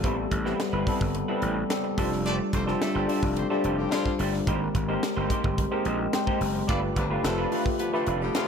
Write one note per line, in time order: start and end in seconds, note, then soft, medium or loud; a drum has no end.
0.03 0.25 A1 loud
0.03 0.24 G3 medium
0.03 0.30 G3 medium
0.03 0.30 B3 medium
0.03 0.17 C4 medium
0.03 0.30 C4 medium
0.03 0.17 E4 medium
0.03 0.31 A4 medium
0.03 0.16 B4 medium
0.03 kick medium
0.03 closed hi-hat medium
0.17 muted clean electric guitar stroke soft
0.31 0.52 A1 medium
0.31 muted clean electric guitar stroke soft
0.31 kick medium
0.31 closed hi-hat medium
0.45 0.71 G3 medium
0.45 0.58 G3 soft
0.45 0.72 B3 medium
0.45 0.59 C4 medium
0.45 0.72 C4 medium
0.45 0.59 E4 medium
0.45 0.59 B4 medium
0.45 0.72 B4 medium
0.45 snare soft
0.59 muted clean electric guitar stroke soft
0.59 snare loud
0.59 closed hi-hat medium
0.73 0.83 G1 medium
0.73 0.86 G3 medium
0.73 0.86 C4 medium
0.73 0.86 E4 medium
0.73 0.87 B4 medium
0.87 1.03 G3 medium
0.87 1.13 G3 medium
0.87 1.13 B3 medium
0.87 1.01 C4 medium
0.87 1.13 C4 medium
0.87 1.00 E4 medium
0.87 1.14 A4 medium
0.87 1.00 B4 medium
0.87 kick medium
0.87 open hi-hat medium
1.01 1.21 G1 medium
1.01 muted clean electric guitar stroke soft
1.01 kick medium
1.15 muted clean electric guitar stroke soft
1.15 closed hi-hat medium
1.28 1.54 G3 medium
1.28 1.41 G3 medium
1.28 1.55 B3 medium
1.28 1.41 C4 medium
1.28 1.55 C4 medium
1.28 1.42 E4 medium
1.28 1.55 A4 medium
1.28 1.42 B4 medium
1.42 1.63 A1 medium
1.42 1.58 G3 medium
1.42 1.56 C4 medium
1.42 1.55 E4 medium
1.42 1.55 B4 medium
1.42 closed hi-hat medium
1.56 muted clean electric guitar stroke soft
1.70 1.96 G3 medium
1.70 1.98 B3 medium
1.70 1.98 C4 medium
1.70 1.97 A4 medium
1.70 muted clean electric guitar stroke soft
1.70 snare loud
1.70 closed hi-hat medium
1.84 muted clean electric guitar stroke soft
1.98 2.39 F1 medium
1.98 2.53 G3 medium
1.98 2.18 A3 medium
1.98 2.53 D4 medium
1.98 2.11 D4 medium
1.98 2.53 F4 medium
1.98 2.11 G4 medium
1.98 2.54 A4 medium
1.98 2.11 C5 loud
1.98 kick loud
1.98 snare soft
1.98 open hi-hat medium
2.12 muted clean electric guitar stroke medium
2.12 snare soft
2.26 2.46 A3 medium
2.26 2.37 A3 medium
2.26 2.39 D4 medium
2.26 2.37 D4 medium
2.26 2.37 G4 medium
2.26 2.39 G4 medium
2.26 2.39 C5 medium
2.26 2.37 D5 loud
2.26 closed hi-hat medium
2.40 muted clean electric guitar stroke soft
2.53 2.74 F1 medium
2.53 2.65 A3 medium
2.53 2.65 C4 medium
2.53 2.65 G4 medium
2.53 2.65 C5 medium
2.53 muted clean electric guitar stroke soft
2.53 kick medium
2.53 closed hi-hat medium
2.66 2.93 G3 medium
2.66 2.80 A3 soft
2.66 2.93 D4 medium
2.66 2.80 D4 soft
2.66 2.93 F4 medium
2.66 2.80 G4 medium
2.66 2.93 A4 loud
2.66 2.81 C5 medium
2.66 snare soft
2.81 3.04 D3 loud
2.81 3.03 A3 loud
2.81 3.03 C4 medium
2.81 3.03 A4 loud
2.81 muted clean electric guitar stroke soft
2.81 snare loud
2.81 closed hi-hat medium
2.95 3.05 G1 medium
2.95 3.07 A3 medium
2.95 3.08 D4 medium
2.95 3.08 G4 medium
2.95 3.08 C5 medium
3.08 3.34 G3 medium
3.08 3.24 A3 medium
3.08 3.34 D4 medium
3.08 3.22 D4 medium
3.08 3.34 F4 medium
3.08 3.22 G4 medium
3.08 3.35 A4 medium
3.08 3.21 C5 medium
3.08 open hi-hat medium
3.23 3.43 F1 medium
3.23 muted clean electric guitar stroke medium
3.23 kick medium
3.36 3.48 A3 medium
3.36 3.48 C4 medium
3.36 3.47 G4 medium
3.36 3.48 C5 medium
3.36 muted clean electric guitar stroke soft
3.36 closed hi-hat medium
3.50 3.61 D3 medium
3.50 3.76 G3 medium
3.50 3.61 A3 medium
3.50 3.63 A3 medium
3.50 3.61 C4 medium
3.50 3.76 D4 medium
3.50 3.63 D4 medium
3.50 3.76 F4 medium
3.50 3.64 G4 medium
3.50 3.77 G4 medium
3.50 3.61 A4 medium
3.50 3.64 C5 medium
3.64 3.85 F1 medium
3.64 3.80 A3 medium
3.64 3.78 D4 medium
3.64 3.77 G4 medium
3.64 3.77 C5 medium
3.64 closed hi-hat medium
3.77 3.89 D3 medium
3.77 3.88 G3 medium
3.77 3.89 C4 medium
3.77 3.88 G4 medium
3.77 muted clean electric guitar stroke soft
3.90 4.14 D3 loud
3.90 4.13 F3 loud
3.90 4.25 G3 medium
3.90 4.13 C4 loud
3.90 4.26 D4 medium
3.90 4.26 F4 medium
3.90 4.13 F4 loud
3.90 4.26 C5 medium
3.90 muted clean electric guitar stroke soft
3.90 snare loud
3.90 closed hi-hat medium
4.05 muted clean electric guitar stroke soft
4.05 kick medium
4.05 snare soft
4.19 4.40 G1 medium
4.19 4.39 A3 medium
4.19 4.33 D4 medium
4.19 4.33 G4 medium
4.19 4.33 C5 medium
4.19 open hi-hat medium
4.34 muted clean electric guitar stroke soft
4.34 snare soft
4.46 4.68 G#1 loud
4.46 4.72 G#3 medium
4.46 4.67 A#3 medium
4.46 4.72 C4 medium
4.46 4.61 D#4 medium
4.46 4.73 G4 medium
4.46 4.60 G4 medium
4.46 4.73 A#4 medium
4.46 4.60 C5 medium
4.46 kick loud
4.46 closed hi-hat medium
4.61 muted clean electric guitar stroke medium
4.75 4.95 G#1 medium
4.75 muted clean electric guitar stroke soft
4.75 kick medium
4.75 closed hi-hat medium
4.88 5.14 G#3 medium
4.88 5.01 A#3 medium
4.88 5.14 C4 medium
4.88 5.02 D#4 medium
4.88 5.14 G4 medium
4.88 5.02 G4 medium
4.88 5.15 A#4 medium
4.88 5.02 C5 medium
5.02 muted clean electric guitar stroke soft
5.02 snare loud
5.02 closed hi-hat medium
5.16 5.27 G1 medium
5.16 5.29 A#3 medium
5.16 5.29 D#4 medium
5.16 5.30 G4 medium
5.16 5.30 C5 medium
5.29 5.56 G#3 medium
5.29 5.46 A#3 medium
5.29 5.56 C4 medium
5.29 5.44 D#4 medium
5.29 5.56 G4 medium
5.29 5.44 G4 medium
5.29 5.56 C5 medium
5.29 5.43 C5 medium
5.29 kick medium
5.29 closed hi-hat medium
5.44 5.65 G1 medium
5.44 muted clean electric guitar stroke soft
5.44 kick medium
5.58 muted clean electric guitar stroke soft
5.58 kick medium
5.58 closed hi-hat medium
5.71 5.97 G#3 medium
5.71 5.84 A#3 medium
5.71 5.97 C4 medium
5.71 5.85 D#4 medium
5.71 5.85 G4 medium
5.71 5.98 G4 medium
5.71 5.98 A#4 medium
5.71 5.85 C5 medium
5.85 6.06 A#1 medium
5.85 6.01 A#3 medium
5.85 5.99 D#4 medium
5.85 5.98 G4 medium
5.85 5.98 C5 medium
5.85 6.11 D#5 medium
5.85 closed hi-hat medium
5.99 muted clean electric guitar stroke soft
6.12 6.47 G#3 medium
6.12 6.47 C4 medium
6.12 6.48 G4 medium
6.12 6.48 C5 medium
6.12 6.26 G5 medium
6.12 muted clean electric guitar stroke soft
6.12 snare loud
6.12 closed hi-hat medium
6.27 6.40 A#3 medium
6.27 6.40 D#4 medium
6.27 6.40 G4 medium
6.27 6.41 C5 medium
6.27 6.66 A#5 medium
6.27 kick medium
6.41 6.61 F#1 medium
6.41 muted clean electric guitar stroke soft
6.41 open hi-hat medium
6.55 muted clean electric guitar stroke soft
6.68 6.89 G1 loud
6.68 6.94 A3 medium
6.68 6.88 A3 medium
6.68 6.79 B3 medium
6.68 6.79 D4 medium
6.68 6.83 D4 medium
6.68 6.94 F4 medium
6.68 6.82 F4 medium
6.68 6.95 G4 medium
6.68 6.79 A4 medium
6.68 6.95 B4 medium
6.68 6.81 B4 loud
6.68 6.79 D5 loud
6.68 kick loud
6.68 closed hi-hat medium
6.83 muted clean electric guitar stroke medium
6.96 7.17 G1 medium
6.96 7.07 F3 medium
6.96 7.07 B3 medium
6.96 7.07 D4 medium
6.96 7.07 B4 medium
6.96 muted clean electric guitar stroke soft
6.96 kick medium
6.96 closed hi-hat medium
7.10 7.36 A3 medium
7.10 7.23 A3 soft
7.10 7.23 D4 medium
7.10 7.36 F4 medium
7.10 7.24 F4 medium
7.10 7.36 G4 medium
7.10 7.24 B4 medium
7.10 7.36 B4 medium
7.23 7.44 F1 medium
7.23 7.46 F3 medium
7.23 7.46 A3 loud
7.23 7.46 D4 medium
7.23 7.46 A4 loud
7.23 muted clean electric guitar stroke soft
7.23 snare loud
7.23 closed hi-hat medium
7.38 7.51 A3 medium
7.38 7.51 D4 medium
7.38 7.51 F4 medium
7.38 7.52 B4 medium
7.51 7.77 A3 medium
7.51 7.67 A3 medium
7.51 7.66 D4 medium
7.51 7.78 F4 medium
7.51 7.65 F4 medium
7.51 7.78 G4 medium
7.51 7.78 B4 medium
7.51 7.65 B4 medium
7.51 open hi-hat medium
7.66 muted clean electric guitar stroke soft
7.66 kick medium
7.79 7.90 F3 medium
7.79 7.90 B3 medium
7.79 7.90 D4 medium
7.79 7.90 B4 medium
7.79 muted clean electric guitar stroke soft
7.79 closed hi-hat medium
7.93 8.04 F3 medium
7.93 8.19 A3 medium
7.93 8.04 A3 medium
7.93 8.06 A3 medium
7.93 8.04 D4 medium
7.93 8.06 D4 medium
7.93 8.19 F4 medium
7.93 8.07 F4 medium
7.93 8.19 G4 medium
7.93 8.04 A4 medium
7.93 8.07 B4 medium
7.93 8.19 B4 medium
8.07 8.27 F1 medium
8.07 8.23 A3 medium
8.07 8.21 D4 medium
8.07 8.21 F4 medium
8.07 8.20 B4 medium
8.07 closed hi-hat medium
8.21 8.32 D3 medium
8.21 8.32 G3 medium
8.21 8.32 B3 medium
8.21 8.32 G4 loud
8.21 muted clean electric guitar stroke soft
8.34 8.48 D3 loud
8.34 8.48 F3 medium
8.34 8.48 A3 medium
8.34 8.48 B3 loud
8.34 8.48 F4 medium
8.34 8.48 F4 loud
8.34 8.48 G4 medium
8.34 8.48 A4 medium
8.34 muted clean electric guitar stroke soft
8.34 snare loud
8.34 closed hi-hat medium